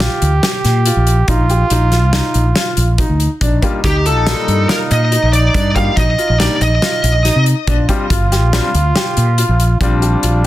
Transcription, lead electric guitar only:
3.85 4.04 G4 medium
4.06 4.66 A4 medium
4.69 4.75 A#4 medium
4.92 5.33 D#5 medium
5.33 5.73 D5 medium
5.76 5.96 F5 loud
5.97 6.37 D#5 medium
6.40 6.61 D5 medium
6.62 7.43 D#5 medium

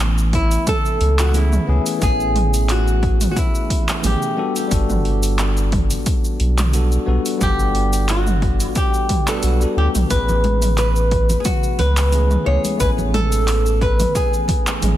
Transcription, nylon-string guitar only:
0.35 0.68 E4 medium
0.69 1.16 A4 loud
1.20 1.35 F#4 medium
1.36 1.84 E4 medium
2.03 2.71 G#4 loud
2.71 3.30 F#4 loud
3.31 3.37 F#4 medium
3.38 4.01 E4 medium
4.06 4.53 G4 medium
7.43 8.10 G4 medium
8.10 8.77 F#4 medium
8.77 9.25 G4 medium
9.28 9.44 A4 medium
9.44 9.77 F#4 medium
9.78 9.87 G4 medium
10.10 10.77 B4 loud
10.78 11.35 B4 loud
11.40 11.46 G#4 medium
11.45 11.80 F#4 loud
11.79 12.46 B4 loud
12.46 12.80 C#5 loud
12.80 12.89 B4 loud
13.14 13.82 A4 loud
13.82 14.13 B4 loud
14.16 14.97 G#4 medium

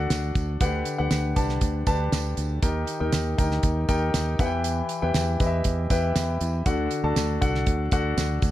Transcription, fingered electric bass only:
0.11 0.32 D2 medium
0.35 0.56 D2 medium
0.61 0.82 D2 medium
1.00 1.10 D2 medium
1.12 1.32 D2 medium
1.37 1.57 C2 medium
1.62 1.82 D2 medium
1.87 2.08 D2 medium
2.12 2.33 D2 medium
2.38 2.58 D2 medium
2.63 2.83 D#2 loud
3.01 3.11 D#2 medium
3.14 3.34 D#2 medium
3.39 3.59 D2 medium
3.63 3.84 D#2 medium
3.89 4.10 D#2 medium
4.15 4.35 D#2 medium
4.39 4.81 E2 medium
5.03 5.13 E2 medium
5.15 5.36 E2 medium
5.40 5.61 E2 medium
5.65 5.86 E2 medium
5.91 6.11 E2 medium
6.16 6.37 E2 medium
6.41 6.62 E2 medium
6.66 6.87 D2 medium
7.04 7.14 D2 medium
7.16 7.37 D2 loud
7.42 7.63 C2 medium
7.67 7.88 D2 loud
7.92 8.13 D2 medium
8.17 8.38 D2 medium
8.42 8.51 D2 loud

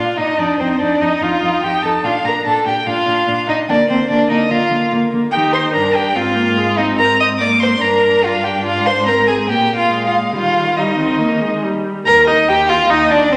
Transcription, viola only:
0.00 0.18 D4 soft
0.19 0.39 D4 soft
0.40 0.60 D#4 soft
0.61 0.80 D#4 soft
0.81 1.00 D#4 soft
1.01 1.21 D#4 soft
1.21 1.41 D#4 soft
1.42 1.63 D#4 soft
1.63 1.83 D#4 soft
1.84 2.04 D#4 soft
2.04 2.25 D4 soft
2.25 2.46 D4 soft
2.46 2.66 D4 soft
2.67 2.87 D4 soft
2.88 3.07 D4 soft
3.08 3.28 D4 soft
3.29 3.49 D4 soft
3.50 3.69 D4 soft
3.70 3.89 A#3 soft
3.90 4.10 A#3 soft
4.10 4.30 A#3 soft
4.30 4.50 A#3 soft
4.51 4.71 A#3 soft
4.71 4.91 A#3 soft
4.92 5.12 A#3 soft
5.13 5.32 A#3 soft
5.33 5.74 D#4 soft
5.73 6.17 D4 soft
6.16 6.37 C4 soft
6.36 6.58 A#3 soft
6.57 6.80 G#3 medium
6.78 7.41 C4 medium
7.40 7.81 A#3 soft
7.81 9.07 D4 soft
9.06 9.49 C4 soft
9.47 9.91 A#3 soft
9.90 10.35 G#3 soft
10.33 10.73 G3 soft
10.77 10.97 G3 soft
10.98 11.20 C4 medium
11.19 11.42 A#3 soft
11.41 11.65 G#3 soft
11.63 12.05 G3 soft
12.06 12.29 A#4 medium
12.27 12.50 D#4 medium
12.49 12.71 G4 medium
12.70 12.91 F4 medium
12.90 13.12 D#4 medium
13.11 13.33 D4 medium
13.32 13.37 C4 medium

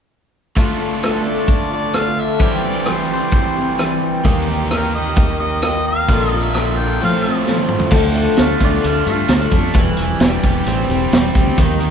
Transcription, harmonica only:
1.04 1.26 A4 medium
1.25 1.71 D5 medium
1.73 1.97 D5 medium
1.96 2.21 F5 medium
2.20 2.66 E5 medium
2.65 2.92 D5 medium
2.90 3.11 C5 medium
3.13 3.99 C5 medium
4.72 4.93 A#4 medium
4.95 5.37 D#5 medium
5.39 5.61 D#5 medium
5.63 5.84 D#5 medium
5.88 6.29 F5 medium
6.29 6.45 D#5 medium
6.43 6.80 E5 medium
6.79 7.01 G5 medium
7.04 7.45 F5 medium

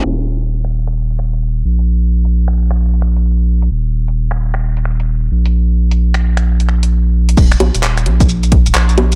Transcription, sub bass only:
0.05 1.63 D#1 medium
1.65 3.69 A#1 medium
3.71 5.29 D#1 medium
5.31 7.36 A#1 medium
7.37 7.55 D#1 loud
7.60 7.70 A#1 medium
7.75 8.08 D#1 loud
8.06 8.60 A#1 medium
8.66 8.72 D#1 medium
8.75 9.15 A#1 medium

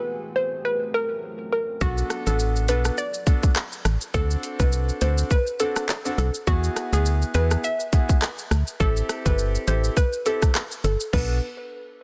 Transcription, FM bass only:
1.81 2.03 B1 loud
2.27 2.70 A1 medium
2.69 2.91 B1 medium
3.85 3.97 A1 medium
4.14 4.36 D2 loud
4.60 4.91 C2 medium
5.02 5.23 D2 loud
6.18 6.30 C2 loud
6.47 6.69 E2 loud
6.93 7.24 D2 medium
7.35 7.56 E2 loud
8.51 8.63 D2 medium
8.80 9.02 A1 loud
9.26 9.57 G1 medium
9.68 9.89 A1 loud
10.84 10.96 G1 loud
11.13 11.40 B1 loud

